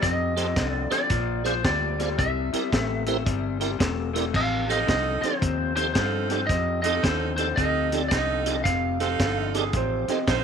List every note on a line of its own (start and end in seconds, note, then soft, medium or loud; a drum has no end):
0.02 0.55 F2 medium
0.02 0.34 F2 medium
0.02 0.34 C3 medium
0.02 0.65 D#5 medium
0.02 kick medium
0.02 snare soft
0.02 closed hi-hat medium
0.36 0.55 F2 medium
0.36 0.55 C3 medium
0.36 0.47 G4 medium
0.36 0.47 A4 medium
0.36 0.47 C5 medium
0.36 0.47 D#5 medium
0.36 snare soft
0.36 closed hi-hat medium
0.56 0.88 C2 medium
0.56 0.87 F2 medium
0.56 0.88 D3 medium
0.56 kick medium
0.56 snare medium
0.56 closed hi-hat medium
0.65 0.92 D5 medium
0.90 1.08 F2 medium
0.90 1.09 D3 medium
0.90 1.01 G4 medium
0.90 1.01 A4 medium
0.90 1.01 C5 medium
0.90 1.47 D5 medium
0.90 1.01 D#5 medium
0.90 muted fingered electric bass stroke soft
0.90 snare soft
0.90 closed hi-hat medium
1.10 1.63 A#1 medium
1.10 1.42 A#2 medium
1.10 1.42 F3 medium
1.10 kick medium
1.10 snare soft
1.10 closed hi-hat medium
1.44 1.63 A#2 medium
1.44 1.63 F3 medium
1.44 1.55 F4 medium
1.44 1.55 G#4 medium
1.44 1.55 C5 medium
1.44 1.66 C5 medium
1.44 1.55 D5 medium
1.44 snare soft
1.44 closed hi-hat medium
1.64 2.17 D2 medium
1.64 1.96 A#2 loud
1.64 1.96 G3 loud
1.64 2.19 D5 medium
1.64 kick medium
1.64 snare loud
1.64 closed hi-hat medium
1.99 2.16 A#2 medium
1.99 2.17 G3 medium
1.99 2.10 F4 medium
1.99 2.10 G#4 medium
1.99 2.10 C5 medium
1.99 2.10 D5 medium
1.99 snare soft
1.99 closed hi-hat medium
2.18 2.51 C2 medium
2.18 2.50 C3 medium
2.18 2.50 G3 medium
2.18 3.77 E5 medium
2.18 kick medium
2.18 closed hi-hat medium
2.53 2.71 C3 medium
2.53 2.71 G3 medium
2.53 2.63 E4 medium
2.53 2.63 G4 medium
2.53 2.63 A#4 medium
2.53 2.63 D5 medium
2.53 snare soft
2.53 closed hi-hat medium
2.72 3.25 A1 medium
2.72 3.04 C3 medium
2.72 3.04 A3 medium
2.72 kick medium
2.72 snare loud
2.72 closed hi-hat medium
3.06 3.24 C3 medium
3.06 3.25 A3 medium
3.06 3.17 E4 medium
3.06 3.17 G4 medium
3.06 3.17 A#4 medium
3.06 3.17 C5 loud
3.06 snare soft
3.06 closed hi-hat medium
3.26 3.79 G1 medium
3.26 3.57 C3 medium
3.26 3.57 G3 medium
3.26 kick medium
3.26 closed hi-hat medium
3.60 3.78 C3 medium
3.60 3.79 G3 medium
3.60 3.71 E4 medium
3.60 3.71 G4 medium
3.60 3.71 A#4 medium
3.60 3.71 D5 medium
3.60 snare soft
3.60 closed hi-hat medium
3.79 4.33 E1 medium
3.79 4.11 C3 medium
3.79 4.11 A3 loud
3.79 kick medium
3.79 snare loud
3.79 closed hi-hat loud
4.13 4.32 C3 medium
4.13 4.32 A3 medium
4.13 4.25 E4 medium
4.13 4.25 G4 medium
4.13 4.25 A#4 medium
4.13 4.25 D5 medium
4.13 snare soft
4.13 closed hi-hat medium
4.33 4.87 A1 medium
4.33 4.65 F2 medium
4.33 4.65 C3 medium
4.33 4.70 F5 medium
4.33 kick medium
4.33 snare soft
4.33 crash medium
4.67 4.86 F2 medium
4.67 4.86 C3 medium
4.67 5.31 D#4 medium
4.67 4.79 D#4 medium
4.67 5.31 F4 medium
4.67 4.79 G4 medium
4.67 4.79 A4 medium
4.67 5.32 A4 medium
4.67 4.79 C5 medium
4.67 4.87 D#5 medium
4.67 snare soft
4.67 closed hi-hat medium
4.87 5.20 C2 medium
4.87 5.19 F2 medium
4.87 5.19 D3 medium
4.87 5.21 D#5 medium
4.87 kick medium
4.87 snare loud
4.87 closed hi-hat medium
5.21 5.39 F2 medium
5.21 5.40 D3 medium
5.21 5.34 D#4 medium
5.21 5.75 C5 medium
5.21 muted fingered electric bass stroke soft
5.21 snare soft
5.21 closed hi-hat medium
5.25 5.34 G4 medium
5.25 5.34 A4 medium
5.25 5.34 C5 medium
5.41 5.94 D#2 medium
5.41 5.73 F2 medium
5.41 5.73 C3 medium
5.41 kick medium
5.41 closed hi-hat medium
5.76 5.94 F2 medium
5.76 5.94 C3 medium
5.76 5.86 D#4 medium
5.76 5.87 G4 medium
5.76 5.87 A4 medium
5.76 5.92 C5 medium
5.76 5.87 C5 medium
5.76 snare soft
5.76 closed hi-hat medium
5.94 6.27 F2 medium
5.94 6.48 G2 medium
5.94 6.27 D3 medium
5.94 6.46 D#4 medium
5.94 6.47 F4 medium
5.94 6.47 A4 medium
5.94 6.51 C5 medium
5.94 kick medium
5.94 snare loud
5.94 closed hi-hat medium
6.29 6.48 F2 medium
6.29 6.48 D3 medium
6.29 6.41 D#4 medium
6.29 6.41 G4 medium
6.29 6.41 A4 medium
6.29 6.41 D5 medium
6.29 snare soft
6.29 closed hi-hat medium
6.47 6.81 F2 medium
6.47 7.02 F2 medium
6.47 6.81 C3 medium
6.47 6.81 D#5 medium
6.47 kick medium
6.47 snare soft
6.47 closed hi-hat medium
6.82 7.01 F2 medium
6.82 7.02 C3 medium
6.82 7.31 D#4 medium
6.82 6.95 D#4 medium
6.82 7.32 F4 medium
6.82 6.95 G4 medium
6.82 7.32 A4 medium
6.82 6.95 A4 medium
6.82 7.04 D#5 medium
6.82 6.95 D#5 medium
6.82 snare soft
6.82 closed hi-hat medium
7.03 7.56 D#2 medium
7.03 7.35 F2 medium
7.03 7.35 D3 medium
7.03 7.35 C5 medium
7.03 kick medium
7.03 snare loud
7.03 closed hi-hat medium
7.37 7.56 F2 medium
7.37 7.56 D3 medium
7.37 7.49 D#4 medium
7.37 7.49 G4 medium
7.37 7.49 A4 medium
7.37 7.58 C5 medium
7.37 7.49 D5 medium
7.37 snare soft
7.37 closed hi-hat medium
7.56 8.10 D2 medium
7.56 7.89 F2 medium
7.56 7.89 C3 medium
7.56 7.96 D#4 medium
7.56 7.97 F4 medium
7.56 7.97 A4 medium
7.56 8.07 D#5 loud
7.56 kick medium
7.56 closed hi-hat medium
7.92 8.10 F2 medium
7.92 8.10 C3 medium
7.92 8.03 D#4 medium
7.92 8.03 G4 medium
7.92 8.03 A4 medium
7.92 8.03 D5 medium
7.92 snare soft
7.92 closed hi-hat medium
8.08 8.64 C2 medium
8.08 8.43 F2 medium
8.08 8.43 D3 medium
8.08 8.62 D#4 medium
8.08 8.62 F4 medium
8.08 8.63 D#5 medium
8.08 kick medium
8.08 snare loud
8.08 closed hi-hat medium
8.14 8.63 A4 medium
8.46 8.64 F2 medium
8.46 8.64 D3 medium
8.46 8.56 D#4 medium
8.46 8.56 G4 medium
8.46 8.57 A4 medium
8.46 8.57 D5 medium
8.46 snare soft
8.46 closed hi-hat medium
8.64 9.18 F1 medium
8.64 8.97 F2 medium
8.64 8.97 C3 medium
8.64 9.49 F5 medium
8.64 kick medium
8.64 snare soft
8.64 closed hi-hat medium
8.99 9.18 F2 medium
8.99 9.18 C3 medium
8.99 9.62 D#4 medium
8.99 9.10 D#4 medium
8.99 9.62 F4 medium
8.99 9.10 G4 medium
8.99 9.10 A4 medium
8.99 9.62 A4 medium
8.99 9.10 C5 medium
8.99 snare soft
8.99 closed hi-hat medium
9.19 9.72 G1 medium
9.19 9.51 F2 medium
9.19 9.51 D3 medium
9.19 kick medium
9.19 snare loud
9.19 closed hi-hat medium
9.54 9.72 F2 medium
9.54 9.72 D3 medium
9.54 9.64 D#4 medium
9.54 9.64 G4 medium
9.54 9.74 G#4 medium
9.54 9.64 A4 medium
9.54 9.64 D5 medium
9.54 snare soft
9.54 closed hi-hat medium
9.73 10.06 A1 medium
9.73 10.05 F2 medium
9.73 10.05 C3 medium
9.73 10.10 C5 medium
9.73 kick medium
9.73 closed hi-hat medium
10.08 10.26 F2 medium
10.08 10.26 C3 medium
10.08 10.19 D#4 medium
10.08 10.19 G4 medium
10.08 10.19 A4 medium
10.08 10.19 C5 medium
10.08 10.28 D#5 medium
10.08 muted fingered electric bass stroke soft
10.08 snare soft
10.08 closed hi-hat medium
10.27 10.44 A#1 medium
10.27 10.44 F2 medium
10.27 10.44 D3 medium
10.27 10.44 D#4 medium
10.27 10.44 F4 medium
10.27 10.44 C5 medium
10.27 10.44 C5 loud
10.27 kick medium
10.27 snare loud
10.27 closed hi-hat medium